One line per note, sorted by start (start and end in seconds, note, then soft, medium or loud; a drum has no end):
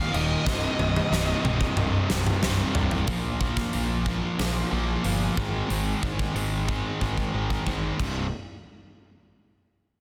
0.00 0.11 D#2 medium
0.00 0.12 A#2 medium
0.00 0.12 D#3 loud
0.00 0.14 F5 medium
0.12 0.34 D#1 medium
0.12 0.44 D#2 medium
0.12 0.44 A#2 loud
0.12 0.44 D#3 loud
0.12 2.39 D#5 medium
0.12 crash medium
0.46 0.67 C1 loud
0.46 1.09 C2 loud
0.46 1.10 G2 loud
0.46 1.10 C3 loud
0.46 kick loud
0.46 snare medium
0.79 0.99 C1 medium
0.79 high tom medium
0.96 high tom medium
1.11 1.32 C1 loud
1.11 1.43 C2 medium
1.11 1.44 G2 loud
1.11 1.44 C3 medium
1.11 snare medium
1.44 1.65 C1 medium
1.44 1.76 C2 medium
1.44 1.76 G2 medium
1.44 1.77 C3 medium
1.44 mid tom medium
1.61 kick medium
1.76 1.97 C1 loud
1.76 2.41 C2 medium
1.76 2.41 G2 loud
1.76 2.42 C3 loud
1.76 mid tom loud
2.10 2.31 C1 medium
2.10 snare loud
2.27 mid tom medium
2.42 2.63 C1 medium
2.42 2.74 C2 medium
2.42 2.75 G2 loud
2.42 2.75 C3 medium
2.42 snare loud
2.75 3.08 C1 medium
2.75 3.06 C2 medium
2.75 3.06 G2 medium
2.75 3.06 C3 medium
2.75 floor tom loud
2.91 floor tom loud
3.07 3.31 A#1 medium
3.07 3.40 A#2 medium
3.07 3.41 F3 loud
3.07 3.41 A#3 loud
3.07 kick loud
3.07 open hi-hat soft
3.41 3.64 A#1 medium
3.41 3.72 A#2 medium
3.41 3.73 F3 medium
3.41 3.73 A#3 loud
3.41 kick medium
3.57 kick medium
3.57 snare soft
3.73 4.21 A#1 medium
3.73 4.05 A#2 medium
3.73 4.06 F3 loud
3.73 4.06 A#3 loud
3.73 open hi-hat soft
4.06 4.38 A#2 medium
4.06 4.38 F3 medium
4.06 4.38 A#3 medium
4.06 kick medium
4.39 4.62 A#1 medium
4.39 4.70 A#2 medium
4.39 4.71 F3 medium
4.39 4.71 A#3 medium
4.39 snare loud
4.39 open hi-hat medium
4.71 4.95 A#1 medium
4.71 5.03 A#2 medium
4.71 5.04 F3 medium
4.71 5.04 A#3 medium
5.04 5.28 G1 medium
5.04 5.35 A#2 medium
5.04 5.35 F3 loud
5.04 5.36 A#3 loud
5.04 open hi-hat soft
5.37 5.61 G#1 medium
5.37 5.68 G#2 medium
5.37 5.68 D#3 medium
5.37 5.69 G#3 medium
5.37 kick loud
5.69 5.93 G#1 medium
5.69 6.01 G#2 medium
5.69 6.02 D#3 loud
5.69 6.02 G#3 medium
5.69 open hi-hat soft
6.02 6.26 G#1 medium
6.02 6.34 G#2 medium
6.02 6.34 D#3 medium
6.02 6.35 G#3 medium
6.02 kick medium
6.19 kick medium
6.35 6.82 G#1 medium
6.35 6.67 G#2 medium
6.35 6.67 D#3 medium
6.35 6.68 G#3 medium
6.35 open hi-hat soft
6.68 6.99 G#2 medium
6.68 7.00 D#3 medium
6.68 7.00 G#3 medium
6.68 kick medium
7.00 7.25 G#1 medium
7.00 7.32 G#2 medium
7.00 7.32 D#3 medium
7.00 7.33 G#3 medium
7.00 kick medium
7.17 kick medium
7.33 7.58 G#1 medium
7.33 7.65 G#2 medium
7.33 7.66 D#3 medium
7.33 7.66 G#3 medium
7.50 kick medium
7.67 7.90 G#1 medium
7.67 7.99 G#2 medium
7.67 8.00 D#3 medium
7.67 8.00 G#3 medium
7.67 kick medium
7.99 8.30 C1 medium
7.99 8.25 C2 medium
7.99 8.26 G2 medium
7.99 8.26 C3 medium
7.99 kick medium
7.99 crash medium